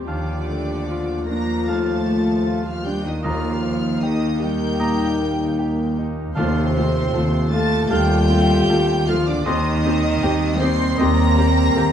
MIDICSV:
0, 0, Header, 1, 12, 480
1, 0, Start_track
1, 0, Tempo, 790514
1, 52, Time_signature, 4, 2, 24, 8
1, 2451, Tempo, 773196
1, 7347, End_track
2, 0, Start_track
2, 0, Title_t, "Violin section"
2, 0, Program_c, 0, 48
2, 49, Note_on_c, 0, 86, 85
2, 757, Note_off_c, 0, 86, 0
2, 783, Note_on_c, 0, 94, 97
2, 1023, Note_off_c, 0, 94, 0
2, 1026, Note_on_c, 0, 93, 90
2, 1619, Note_off_c, 0, 93, 0
2, 1627, Note_on_c, 0, 89, 94
2, 1739, Note_off_c, 0, 89, 0
2, 1742, Note_on_c, 0, 91, 98
2, 1858, Note_off_c, 0, 91, 0
2, 1862, Note_on_c, 0, 87, 86
2, 1976, Note_on_c, 0, 89, 108
2, 1978, Note_off_c, 0, 87, 0
2, 2442, Note_off_c, 0, 89, 0
2, 2453, Note_on_c, 0, 87, 109
2, 2693, Note_off_c, 0, 87, 0
2, 2699, Note_on_c, 0, 91, 112
2, 3657, Note_off_c, 0, 91, 0
2, 3890, Note_on_c, 0, 84, 122
2, 4589, Note_off_c, 0, 84, 0
2, 4616, Note_on_c, 0, 93, 127
2, 4857, Note_off_c, 0, 93, 0
2, 4858, Note_on_c, 0, 91, 127
2, 5577, Note_on_c, 0, 89, 119
2, 5582, Note_off_c, 0, 91, 0
2, 5700, Note_off_c, 0, 89, 0
2, 5704, Note_on_c, 0, 86, 114
2, 5822, Note_on_c, 0, 87, 127
2, 5824, Note_off_c, 0, 86, 0
2, 6519, Note_off_c, 0, 87, 0
2, 6527, Note_on_c, 0, 96, 127
2, 6768, Note_off_c, 0, 96, 0
2, 6772, Note_on_c, 0, 94, 127
2, 7347, Note_off_c, 0, 94, 0
2, 7347, End_track
3, 0, Start_track
3, 0, Title_t, "Flute"
3, 0, Program_c, 1, 73
3, 39, Note_on_c, 1, 81, 69
3, 271, Note_off_c, 1, 81, 0
3, 1020, Note_on_c, 1, 81, 71
3, 1243, Note_off_c, 1, 81, 0
3, 1975, Note_on_c, 1, 82, 84
3, 2196, Note_off_c, 1, 82, 0
3, 2921, Note_on_c, 1, 82, 88
3, 3149, Note_off_c, 1, 82, 0
3, 3884, Note_on_c, 1, 81, 89
3, 4110, Note_off_c, 1, 81, 0
3, 4847, Note_on_c, 1, 81, 98
3, 5075, Note_off_c, 1, 81, 0
3, 5814, Note_on_c, 1, 84, 96
3, 6040, Note_off_c, 1, 84, 0
3, 6772, Note_on_c, 1, 84, 105
3, 6994, Note_off_c, 1, 84, 0
3, 7347, End_track
4, 0, Start_track
4, 0, Title_t, "Violin section"
4, 0, Program_c, 2, 48
4, 48, Note_on_c, 2, 74, 82
4, 756, Note_off_c, 2, 74, 0
4, 782, Note_on_c, 2, 82, 87
4, 1018, Note_off_c, 2, 82, 0
4, 1021, Note_on_c, 2, 81, 80
4, 1617, Note_off_c, 2, 81, 0
4, 1617, Note_on_c, 2, 77, 77
4, 1736, Note_off_c, 2, 77, 0
4, 1740, Note_on_c, 2, 79, 86
4, 1854, Note_on_c, 2, 75, 77
4, 1857, Note_off_c, 2, 79, 0
4, 1974, Note_off_c, 2, 75, 0
4, 1979, Note_on_c, 2, 77, 84
4, 2443, Note_off_c, 2, 77, 0
4, 2447, Note_on_c, 2, 75, 81
4, 2690, Note_off_c, 2, 75, 0
4, 2690, Note_on_c, 2, 79, 88
4, 3652, Note_off_c, 2, 79, 0
4, 3890, Note_on_c, 2, 72, 103
4, 4590, Note_off_c, 2, 72, 0
4, 4619, Note_on_c, 2, 81, 112
4, 4858, Note_off_c, 2, 81, 0
4, 4861, Note_on_c, 2, 79, 118
4, 5569, Note_off_c, 2, 79, 0
4, 5579, Note_on_c, 2, 77, 102
4, 5697, Note_on_c, 2, 74, 99
4, 5701, Note_off_c, 2, 77, 0
4, 5818, Note_off_c, 2, 74, 0
4, 5822, Note_on_c, 2, 75, 113
4, 6533, Note_off_c, 2, 75, 0
4, 6533, Note_on_c, 2, 84, 108
4, 6771, Note_off_c, 2, 84, 0
4, 6774, Note_on_c, 2, 82, 124
4, 7347, Note_off_c, 2, 82, 0
4, 7347, End_track
5, 0, Start_track
5, 0, Title_t, "Oboe"
5, 0, Program_c, 3, 68
5, 49, Note_on_c, 3, 77, 64
5, 228, Note_off_c, 3, 77, 0
5, 1021, Note_on_c, 3, 77, 72
5, 1195, Note_off_c, 3, 77, 0
5, 1964, Note_on_c, 3, 75, 76
5, 2142, Note_off_c, 3, 75, 0
5, 2923, Note_on_c, 3, 75, 80
5, 3100, Note_off_c, 3, 75, 0
5, 3888, Note_on_c, 3, 77, 83
5, 4063, Note_off_c, 3, 77, 0
5, 4854, Note_on_c, 3, 77, 95
5, 5029, Note_off_c, 3, 77, 0
5, 5818, Note_on_c, 3, 75, 87
5, 5993, Note_off_c, 3, 75, 0
5, 6758, Note_on_c, 3, 75, 98
5, 6936, Note_off_c, 3, 75, 0
5, 7347, End_track
6, 0, Start_track
6, 0, Title_t, "Clarinet"
6, 0, Program_c, 4, 71
6, 49, Note_on_c, 4, 62, 87
6, 773, Note_on_c, 4, 70, 83
6, 782, Note_off_c, 4, 62, 0
6, 1016, Note_on_c, 4, 69, 78
6, 1025, Note_off_c, 4, 70, 0
6, 1608, Note_on_c, 4, 65, 84
6, 1617, Note_off_c, 4, 69, 0
6, 1728, Note_on_c, 4, 67, 83
6, 1737, Note_off_c, 4, 65, 0
6, 1847, Note_on_c, 4, 63, 84
6, 1856, Note_off_c, 4, 67, 0
6, 1964, Note_on_c, 4, 65, 92
6, 1974, Note_off_c, 4, 63, 0
6, 2429, Note_off_c, 4, 65, 0
6, 2433, Note_on_c, 4, 63, 88
6, 2672, Note_off_c, 4, 63, 0
6, 2676, Note_on_c, 4, 67, 100
6, 3626, Note_off_c, 4, 67, 0
6, 3891, Note_on_c, 4, 60, 101
6, 4611, Note_on_c, 4, 69, 105
6, 4621, Note_off_c, 4, 60, 0
6, 4847, Note_on_c, 4, 67, 116
6, 4857, Note_off_c, 4, 69, 0
6, 5581, Note_on_c, 4, 65, 99
6, 5591, Note_off_c, 4, 67, 0
6, 5705, Note_on_c, 4, 62, 97
6, 5715, Note_off_c, 4, 65, 0
6, 5820, Note_on_c, 4, 63, 113
6, 5830, Note_off_c, 4, 62, 0
6, 6520, Note_off_c, 4, 63, 0
6, 6523, Note_on_c, 4, 72, 110
6, 6762, Note_on_c, 4, 70, 115
6, 6772, Note_off_c, 4, 72, 0
6, 7347, Note_off_c, 4, 70, 0
6, 7347, End_track
7, 0, Start_track
7, 0, Title_t, "Viola section"
7, 0, Program_c, 5, 48
7, 0, Note_on_c, 5, 67, 58
7, 53, Note_on_c, 5, 53, 69
7, 514, Note_off_c, 5, 67, 0
7, 544, Note_on_c, 5, 65, 72
7, 1951, Note_off_c, 5, 53, 0
7, 1972, Note_on_c, 5, 58, 71
7, 1972, Note_on_c, 5, 63, 73
7, 1977, Note_off_c, 5, 65, 0
7, 3867, Note_off_c, 5, 63, 0
7, 3868, Note_off_c, 5, 58, 0
7, 3897, Note_on_c, 5, 65, 76
7, 3899, Note_on_c, 5, 57, 83
7, 3947, Note_off_c, 5, 65, 0
7, 3949, Note_off_c, 5, 57, 0
7, 4139, Note_on_c, 5, 65, 79
7, 4140, Note_on_c, 5, 57, 78
7, 4189, Note_off_c, 5, 57, 0
7, 4189, Note_off_c, 5, 65, 0
7, 4377, Note_on_c, 5, 65, 81
7, 4379, Note_on_c, 5, 57, 77
7, 4427, Note_off_c, 5, 65, 0
7, 4429, Note_off_c, 5, 57, 0
7, 4623, Note_on_c, 5, 57, 78
7, 4623, Note_on_c, 5, 65, 86
7, 4672, Note_off_c, 5, 57, 0
7, 4672, Note_off_c, 5, 65, 0
7, 4858, Note_on_c, 5, 65, 89
7, 4859, Note_on_c, 5, 57, 92
7, 4908, Note_off_c, 5, 65, 0
7, 4909, Note_off_c, 5, 57, 0
7, 5099, Note_on_c, 5, 57, 77
7, 5099, Note_on_c, 5, 65, 78
7, 5148, Note_off_c, 5, 57, 0
7, 5148, Note_off_c, 5, 65, 0
7, 5341, Note_on_c, 5, 57, 80
7, 5342, Note_on_c, 5, 65, 88
7, 5391, Note_off_c, 5, 57, 0
7, 5392, Note_off_c, 5, 65, 0
7, 5580, Note_on_c, 5, 65, 80
7, 5581, Note_on_c, 5, 57, 82
7, 5630, Note_off_c, 5, 65, 0
7, 5631, Note_off_c, 5, 57, 0
7, 5821, Note_on_c, 5, 67, 91
7, 5823, Note_on_c, 5, 60, 91
7, 5871, Note_off_c, 5, 67, 0
7, 5873, Note_off_c, 5, 60, 0
7, 6065, Note_on_c, 5, 60, 88
7, 6065, Note_on_c, 5, 67, 87
7, 6114, Note_off_c, 5, 60, 0
7, 6114, Note_off_c, 5, 67, 0
7, 6298, Note_on_c, 5, 67, 88
7, 6300, Note_on_c, 5, 60, 88
7, 6348, Note_off_c, 5, 67, 0
7, 6349, Note_off_c, 5, 60, 0
7, 6533, Note_on_c, 5, 67, 83
7, 6534, Note_on_c, 5, 60, 85
7, 6583, Note_off_c, 5, 60, 0
7, 6583, Note_off_c, 5, 67, 0
7, 6770, Note_on_c, 5, 60, 98
7, 6771, Note_on_c, 5, 67, 97
7, 6820, Note_off_c, 5, 60, 0
7, 6821, Note_off_c, 5, 67, 0
7, 7008, Note_on_c, 5, 67, 79
7, 7010, Note_on_c, 5, 60, 84
7, 7058, Note_off_c, 5, 67, 0
7, 7059, Note_off_c, 5, 60, 0
7, 7244, Note_on_c, 5, 60, 88
7, 7247, Note_on_c, 5, 67, 81
7, 7294, Note_off_c, 5, 60, 0
7, 7296, Note_off_c, 5, 67, 0
7, 7347, End_track
8, 0, Start_track
8, 0, Title_t, "Grand piano"
8, 0, Program_c, 6, 0
8, 0, Control_c, 6, 64, 127
8, 0, Note_on_c, 6, 39, 53
8, 0, Note_on_c, 6, 55, 48
8, 0, Note_on_c, 6, 60, 50
8, 0, Note_on_c, 6, 67, 50
8, 46, Note_off_c, 6, 39, 0
8, 46, Note_on_c, 6, 39, 65
8, 64, Note_off_c, 6, 55, 0
8, 64, Control_c, 6, 64, 0
8, 67, Note_off_c, 6, 60, 0
8, 70, Note_off_c, 6, 67, 0
8, 158, Control_c, 6, 64, 127
8, 295, Note_on_c, 6, 57, 47
8, 542, Note_on_c, 6, 65, 56
8, 685, Note_off_c, 6, 57, 0
8, 786, Note_on_c, 6, 62, 54
8, 928, Note_off_c, 6, 65, 0
8, 996, Note_off_c, 6, 39, 0
8, 1024, Note_on_c, 6, 39, 61
8, 1167, Note_off_c, 6, 62, 0
8, 1258, Note_on_c, 6, 57, 48
8, 1497, Note_on_c, 6, 65, 59
8, 1640, Note_off_c, 6, 57, 0
8, 1735, Note_on_c, 6, 62, 57
8, 1878, Note_off_c, 6, 65, 0
8, 1951, Note_off_c, 6, 39, 0
8, 1967, Note_on_c, 6, 39, 76
8, 1974, Note_off_c, 6, 62, 0
8, 1986, Control_c, 6, 64, 0
8, 2086, Control_c, 6, 64, 127
8, 2203, Note_on_c, 6, 58, 58
8, 2446, Note_on_c, 6, 67, 62
8, 2591, Note_off_c, 6, 58, 0
8, 2688, Note_on_c, 6, 63, 62
8, 2834, Note_off_c, 6, 67, 0
8, 2904, Note_off_c, 6, 39, 0
8, 2927, Note_on_c, 6, 46, 60
8, 3073, Note_off_c, 6, 63, 0
8, 3176, Note_on_c, 6, 58, 62
8, 3314, Note_off_c, 6, 46, 0
8, 3414, Note_on_c, 6, 67, 65
8, 3559, Note_off_c, 6, 58, 0
8, 3659, Note_on_c, 6, 63, 61
8, 3799, Note_off_c, 6, 67, 0
8, 3896, Note_off_c, 6, 63, 0
8, 3901, Note_on_c, 6, 39, 87
8, 3904, Control_c, 6, 64, 0
8, 3994, Control_c, 6, 64, 127
8, 4139, Note_on_c, 6, 60, 64
8, 4363, Note_off_c, 6, 39, 0
8, 4376, Note_on_c, 6, 69, 78
8, 4523, Note_off_c, 6, 60, 0
8, 4618, Note_on_c, 6, 65, 75
8, 4763, Note_off_c, 6, 69, 0
8, 4859, Note_on_c, 6, 39, 75
8, 5002, Note_off_c, 6, 65, 0
8, 5096, Note_on_c, 6, 60, 67
8, 5325, Note_off_c, 6, 39, 0
8, 5344, Note_on_c, 6, 69, 75
8, 5484, Note_off_c, 6, 60, 0
8, 5582, Note_on_c, 6, 65, 71
8, 5729, Note_off_c, 6, 69, 0
8, 5816, Note_on_c, 6, 39, 99
8, 5823, Note_off_c, 6, 65, 0
8, 5833, Control_c, 6, 64, 0
8, 5943, Control_c, 6, 64, 127
8, 6061, Note_on_c, 6, 60, 69
8, 6297, Note_on_c, 6, 67, 78
8, 6439, Note_off_c, 6, 60, 0
8, 6533, Note_on_c, 6, 63, 73
8, 6676, Note_off_c, 6, 67, 0
8, 6743, Note_off_c, 6, 39, 0
8, 6777, Note_on_c, 6, 39, 83
8, 6915, Note_off_c, 6, 63, 0
8, 7011, Note_on_c, 6, 60, 70
8, 7257, Note_on_c, 6, 67, 73
8, 7347, Note_off_c, 6, 39, 0
8, 7347, Note_off_c, 6, 60, 0
8, 7347, Note_off_c, 6, 67, 0
8, 7347, End_track
9, 0, Start_track
9, 0, Title_t, "French horn section"
9, 0, Program_c, 7, 60
9, 52, Note_on_c, 7, 53, 77
9, 52, Note_on_c, 7, 65, 76
9, 1862, Note_off_c, 7, 53, 0
9, 1862, Note_off_c, 7, 65, 0
9, 1965, Note_on_c, 7, 63, 94
9, 1969, Note_on_c, 7, 58, 85
9, 3864, Note_off_c, 7, 63, 0
9, 3866, Note_off_c, 7, 58, 0
9, 3893, Note_on_c, 7, 65, 102
9, 3897, Note_on_c, 7, 57, 100
9, 5798, Note_off_c, 7, 65, 0
9, 5800, Note_off_c, 7, 57, 0
9, 5807, Note_on_c, 7, 55, 103
9, 5807, Note_on_c, 7, 60, 109
9, 7347, Note_off_c, 7, 55, 0
9, 7347, Note_off_c, 7, 60, 0
9, 7347, End_track
10, 0, Start_track
10, 0, Title_t, "Cello section"
10, 0, Program_c, 8, 48
10, 54, Note_on_c, 8, 50, 86
10, 759, Note_off_c, 8, 50, 0
10, 782, Note_on_c, 8, 58, 84
10, 1022, Note_off_c, 8, 58, 0
10, 1022, Note_on_c, 8, 57, 80
10, 1617, Note_off_c, 8, 57, 0
10, 1617, Note_on_c, 8, 53, 72
10, 1734, Note_on_c, 8, 55, 84
10, 1736, Note_off_c, 8, 53, 0
10, 1851, Note_on_c, 8, 51, 77
10, 1852, Note_off_c, 8, 55, 0
10, 1972, Note_off_c, 8, 51, 0
10, 1976, Note_on_c, 8, 53, 88
10, 2448, Note_on_c, 8, 51, 86
10, 2451, Note_off_c, 8, 53, 0
10, 2687, Note_on_c, 8, 55, 94
10, 2691, Note_off_c, 8, 51, 0
10, 3651, Note_off_c, 8, 55, 0
10, 3895, Note_on_c, 8, 48, 106
10, 4592, Note_off_c, 8, 48, 0
10, 4618, Note_on_c, 8, 57, 106
10, 4858, Note_off_c, 8, 57, 0
10, 4859, Note_on_c, 8, 55, 120
10, 5580, Note_on_c, 8, 53, 102
10, 5582, Note_off_c, 8, 55, 0
10, 5701, Note_off_c, 8, 53, 0
10, 5704, Note_on_c, 8, 50, 106
10, 5823, Note_on_c, 8, 51, 120
10, 5824, Note_off_c, 8, 50, 0
10, 6520, Note_off_c, 8, 51, 0
10, 6531, Note_on_c, 8, 60, 120
10, 6769, Note_on_c, 8, 58, 123
10, 6770, Note_off_c, 8, 60, 0
10, 7347, Note_off_c, 8, 58, 0
10, 7347, End_track
11, 0, Start_track
11, 0, Title_t, "Timpani"
11, 0, Program_c, 10, 47
11, 1975, Note_on_c, 10, 51, 98
11, 2668, Note_off_c, 10, 51, 0
11, 3897, Note_on_c, 10, 51, 106
11, 4593, Note_off_c, 10, 51, 0
11, 7347, End_track
12, 0, Start_track
12, 0, Title_t, "Double bass section"
12, 0, Program_c, 11, 48
12, 47, Note_on_c, 11, 39, 74
12, 3866, Note_off_c, 11, 39, 0
12, 3892, Note_on_c, 11, 39, 101
12, 4315, Note_off_c, 11, 39, 0
12, 4370, Note_on_c, 11, 39, 99
12, 4799, Note_off_c, 11, 39, 0
12, 4854, Note_on_c, 11, 39, 105
12, 5280, Note_off_c, 11, 39, 0
12, 5335, Note_on_c, 11, 39, 96
12, 5764, Note_off_c, 11, 39, 0
12, 5818, Note_on_c, 11, 39, 105
12, 6240, Note_off_c, 11, 39, 0
12, 6290, Note_on_c, 11, 39, 103
12, 6711, Note_off_c, 11, 39, 0
12, 6764, Note_on_c, 11, 39, 99
12, 7189, Note_off_c, 11, 39, 0
12, 7244, Note_on_c, 11, 39, 112
12, 7347, Note_off_c, 11, 39, 0
12, 7347, End_track
0, 0, End_of_file